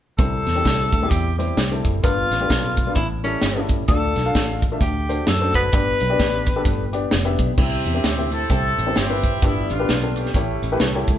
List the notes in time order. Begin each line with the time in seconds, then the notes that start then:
0.18 C2 C3 G3 C4 E4 A4 C5, kick, closed hi-hat
0.47 E2, snare, closed hi-hat
0.55 G3 C4 E4 G4
0.65 C2, kick, snare, closed hi-hat
0.93 D2, kick, closed hi-hat
1.02 G3 C4 E4 G4
1.09 E2 G4, kick, closed hi-hat
1.38 G3 C4 E4 G4 C5, closed hi-hat
1.57 C2, snare, closed hi-hat
1.71 G3 C4 E4 A4
1.85 F#1, kick, closed hi-hat
2.03 G1 G2 G3 B3 D4 F4 B4, kick, closed hi-hat
2.31 A1, snare, closed hi-hat
2.40 G3 B3 D4 G4
2.46 B1 A4, kick
2.51 snare, closed hi-hat
2.77 kick, closed hi-hat
2.86 G3 B3 D4 F4
2.95 A1 A2 E4, kick, closed hi-hat
3.23 G3 C#4 E4 A4, closed hi-hat
3.41 G1, snare, closed hi-hat
3.56 G3 C#4 E4 A4
3.69 kick, closed hi-hat
3.88 D2 D3 A3 D4 F4 A4 D5, kick, closed hi-hat
4.16 B1, snare, closed hi-hat
4.25 A3 D4 F4 F5
4.35 A1, kick, snare, closed hi-hat
4.62 kick, closed hi-hat
4.71 A3 D4 F4 E5
4.81 D2 D3 G4, kick, closed hi-hat
5.09 A3 D4 F#4 C5, closed hi-hat
5.27 F#2 A4, snare, closed hi-hat
5.40 A3 D4 F#4 C5
5.54 F#1 B4, kick, closed hi-hat
5.72 G1 G2 B3 D4 G4 D5, kick, closed hi-hat
6.00 B1, closed hi-hat
6.10 B3 D4 G4 D5
6.20 A1, kick, snare, closed hi-hat
6.46 kick, closed hi-hat
6.56 B3 D4 G4 A4
6.65 G1, kick, closed hi-hat
6.93 B3 D4 G4 D5, closed hi-hat
7.11 F1, snare, closed hi-hat
7.25 B3 D4 G4 E5
7.39 B1, kick, closed hi-hat
7.58 C2 C3 C4 E4 G4 E5, kick, crash
7.85 E2, closed hi-hat
7.94 C4 E4 G4 E5
8.04 D2, snare, closed hi-hat
8.18 C4 E4 G4 E5
8.32 C4 E4 A4, closed hi-hat
8.50 C2 C4 E4 G4 G5, kick, closed hi-hat
8.78 A1, closed hi-hat
8.87 C4 E4 G4 C5
8.96 G1 C4 E4 G4, snare, closed hi-hat
9.10 C4 E4 G4 B4
9.24 kick, closed hi-hat
9.42 G1 G2 G3 B3 D4 E4 G4 D5, kick, closed hi-hat
9.70 A1 B3 D4 F4, closed hi-hat
9.79 B3 D4 G4 B4
9.89 B1, snare, closed hi-hat
10.02 B3 D4 G4 A4
10.16 C#4 E4 G4, closed hi-hat
10.26 snare
10.34 A1 A2 A3 E4 G4 C#5, kick, closed hi-hat
10.62 A1, closed hi-hat
10.72 A3 E4 G4 B4
10.80 C2, snare, closed hi-hat
10.95 A3 E4 G4 C#5
11.08 C#2, kick, closed hi-hat